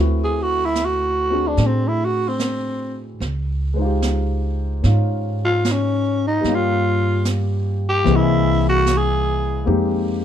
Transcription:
0.00 1.54 D2 medium
0.00 3.18 A3 soft
0.00 1.29 C4 soft
0.00 3.23 E4 soft
0.00 1.31 F#4 soft
0.00 3.20 B4 soft
0.24 0.44 G#4 medium
0.42 0.67 F#4 medium
0.65 0.86 E4 medium
0.75 snare soft
0.75 hi-hat pedal soft
0.85 1.49 F#4 medium
1.30 3.21 C4 soft
1.30 3.21 D4 soft
1.30 3.22 F#4 soft
1.30 3.22 G#4 soft
1.48 1.68 D4 medium
1.57 3.18 A2 medium
1.57 brush sweep soft
1.57 snare soft
1.66 1.89 C4 medium
1.88 2.06 E4 medium
2.05 2.30 F#4 medium
2.28 3.10 C4 medium
2.39 snare soft
2.39 hi-hat pedal soft
3.20 4.80 C#2 medium
3.20 brush sweep soft
3.20 snare soft
3.74 6.43 G#3 soft
3.74 6.44 C5 soft
3.79 4.83 D#4 soft
3.79 4.85 F4 soft
3.85 6.49 G4 medium
4.02 snare soft
4.02 hi-hat pedal soft
4.83 6.41 G#2 medium
4.83 6.44 C#4 soft
4.83 6.46 D#4 soft
4.83 6.46 F4 medium
4.83 brush sweep soft
4.83 snare soft
5.45 5.74 F4 medium
5.65 snare medium
5.65 hi-hat pedal medium
5.72 6.24 C#4 medium
6.27 6.56 D#4 medium
6.41 8.02 G2 medium
6.41 8.04 G3 medium
6.41 8.04 A#3 medium
6.41 brush sweep soft
6.41 snare soft
6.46 8.07 C#4 soft
6.46 8.08 F4 soft
6.52 7.31 F4 medium
6.52 8.10 G4 medium
7.25 snare soft
7.25 hi-hat pedal medium
7.89 8.17 G4 loud
8.04 9.63 C2 medium
8.04 9.66 E3 medium
8.04 9.64 A#3 medium
8.04 9.64 C4 medium
8.04 9.67 D#5 medium
8.04 brush sweep soft
8.04 snare soft
8.09 9.68 G#4 medium
8.16 8.66 E4 medium
8.69 8.98 F#4 medium
8.86 snare medium
8.86 hi-hat pedal medium
8.97 9.72 G#4 medium
9.65 10.25 F2 medium
9.65 10.25 G#3 medium
9.65 10.25 A#3 soft
9.65 10.25 C4 medium
9.65 10.25 D#4 medium
9.65 10.25 G4 medium
9.65 brush sweep soft

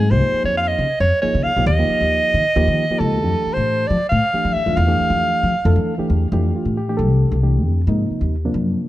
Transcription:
0.00 0.12 G#2 medium
0.00 0.12 G#4 medium
0.11 0.20 C#2 medium
0.11 0.86 F3 medium
0.11 0.86 A#3 medium
0.11 0.86 D#4 medium
0.11 0.86 G4 medium
0.11 0.44 C5 loud
0.33 muted upright bass stroke soft
0.44 0.71 F2 medium
0.44 0.55 C#5 medium
0.57 0.61 F5 loud
0.57 0.69 F5 medium
0.68 1.00 D#5 medium
0.78 0.87 C#3 medium
1.00 1.09 F2 medium
1.00 1.21 C#5 medium
1.22 1.51 F3 medium
1.22 1.50 A#3 medium
1.22 1.51 D#4 medium
1.22 1.51 G#4 medium
1.22 1.44 C#5 medium
1.22 muted upright bass stroke soft
1.35 1.43 C#3 medium
1.43 1.66 F5 loud
1.43 muted upright bass stroke soft
1.56 1.65 A#1 medium
1.56 1.68 F3 medium
1.56 1.68 A#3 medium
1.56 1.68 D#4 medium
1.56 1.68 G4 medium
1.66 1.85 D#2 loud
1.66 3.01 D#5 loud
1.78 2.43 F3 medium
1.78 2.43 A#3 medium
1.78 2.44 D#4 medium
1.78 2.44 G4 medium
1.89 muted upright bass stroke soft
2.01 2.19 D#2 medium
2.34 2.43 D#3 medium
2.56 2.65 D#2 loud
2.56 2.84 F3 medium
2.56 2.84 A#3 medium
2.56 2.84 D#4 medium
2.56 2.84 G4 loud
2.68 2.85 D#3 medium
2.89 3.18 F3 medium
2.89 3.18 A#3 medium
2.89 3.18 D#4 medium
2.89 3.18 G4 medium
2.89 muted upright bass stroke soft
2.99 3.23 C#2 medium
2.99 3.55 A4 loud
3.23 3.32 F2 loud
3.23 3.97 E3 medium
3.23 3.97 A3 medium
3.23 3.97 D4 medium
3.23 3.97 G4 medium
3.46 muted upright bass stroke soft
3.53 3.83 A2 medium
3.53 3.88 C5 medium
3.87 3.99 F3 medium
3.87 4.08 D5 medium
4.09 4.20 A2 medium
4.09 4.54 F5 loud
4.34 4.61 E3 medium
4.34 4.61 A3 medium
4.34 4.61 D4 medium
4.34 4.62 G4 medium
4.34 muted upright bass stroke soft
4.45 4.53 F3 medium
4.53 4.77 E5 medium
4.53 muted upright bass stroke soft
4.66 4.75 F2 medium
4.66 4.85 E3 medium
4.66 4.85 A3 medium
4.66 4.85 D4 medium
4.66 4.85 F4 medium
4.76 4.95 E2 loud
4.76 5.88 F5 loud
4.87 5.52 E3 medium
4.87 5.53 A3 medium
4.87 5.53 D4 medium
4.87 5.53 G4 medium
5.00 muted upright bass stroke soft
5.10 5.28 F2 medium
5.43 5.53 F3 medium
5.65 5.75 F2 loud
5.65 5.94 E3 medium
5.65 5.93 A3 medium
5.65 5.94 D4 medium
5.65 5.94 A4 medium
5.76 5.94 F3 medium
5.98 6.27 E3 medium
5.98 6.27 A3 medium
5.98 6.27 D4 medium
5.98 6.27 G4 medium
5.98 muted upright bass stroke soft
6.10 6.28 E2 medium
6.32 6.50 F2 medium
6.32 6.79 E3 medium
6.32 6.79 A3 medium
6.32 6.79 D4 medium
6.32 6.76 G4 medium
6.56 6.77 F4 medium
6.65 7.00 A2 medium
6.77 6.88 G4 medium
6.89 7.35 E3 medium
6.89 7.35 A3 medium
6.89 7.35 D4 medium
6.89 7.35 G4 medium
6.97 7.26 C2 medium
6.97 7.39 A4 medium
7.32 7.65 C2 medium
7.43 7.80 E3 medium
7.43 7.80 A3 medium
7.43 7.81 D4 medium
7.43 7.81 G4 medium
7.65 7.83 F2 medium
7.87 8.05 G#2 medium
7.87 8.34 C3 medium
7.87 8.34 F3 medium
7.87 8.35 A#3 medium
7.87 8.35 D#4 medium
8.10 muted upright bass stroke soft
8.21 8.48 D#2 medium
8.45 8.88 C3 medium
8.45 8.88 F3 medium
8.45 8.88 A#3 medium
8.45 8.88 D4 medium
8.54 8.72 F#2 medium

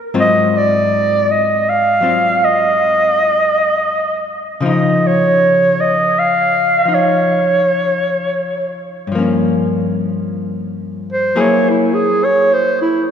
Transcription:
0.00 0.12 D#3 soft
0.00 0.13 A#3 soft
0.00 0.14 C4 soft
0.00 0.15 G4 soft
0.14 4.63 G#2 medium
0.14 2.00 F#3 medium
0.14 2.01 C4 medium
0.14 2.03 F4 medium
0.20 0.59 D#5 medium
0.57 1.32 D5 medium
1.31 1.71 D#5 medium
1.69 2.46 F5 medium
2.01 4.62 F#3 soft
2.01 4.63 C4 soft
2.01 4.64 F4 soft
2.45 4.27 D#5 medium
4.61 9.10 C#3 medium
4.61 6.84 F3 medium
4.66 6.87 D#4 medium
4.66 5.08 D#5 medium
5.07 5.82 C#5 medium
5.81 6.21 D#5 medium
6.19 6.96 F5 medium
6.85 9.10 F3 soft
6.85 9.12 D#4 soft
6.94 8.76 C#5 medium
9.07 11.33 G2 soft
9.12 11.35 F3 soft
9.12 11.35 A#3 soft
9.18 11.36 C#4 medium
11.13 11.42 C5 medium
11.36 13.11 F#3 medium
11.36 13.11 A#3 medium
11.36 13.11 E4 medium
11.36 13.11 G#4 medium
11.40 11.71 C#5 medium
11.69 11.96 E4 medium
11.94 12.26 G#4 medium
12.25 12.55 C#5 medium
12.53 12.81 C5 medium
12.82 13.05 E4 medium

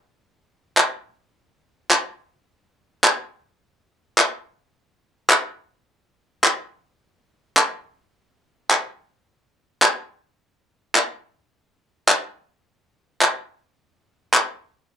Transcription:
0.77 clap medium
1.91 clap medium
3.04 clap medium
4.18 clap medium
5.30 clap medium
6.44 clap medium
7.57 clap medium
8.71 clap medium
9.82 clap medium
10.95 clap medium
12.09 clap medium
13.21 clap medium
14.34 clap medium

